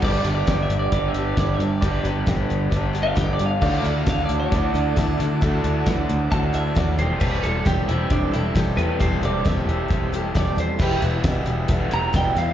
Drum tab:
CC |x-------|--------|x-------|--------|
HH |-xxxxxxx|xxxxxxxx|-xxxxxxx|xxxxxxxx|
SD |--o---o-|--o---o-|--o---oo|--o---o-|
BD |o-o-o-o-|o-o-o-o-|o-o-o-o-|o-o-o-o-|

CC |x-------|--------|x-------|
HH |-xxxxxxx|xxxxxxxx|-xxxxxxx|
SD |--o---o-|--o---o-|--o---oo|
BD |o-o-o-o-|o-o-o-o-|o-o-o-o-|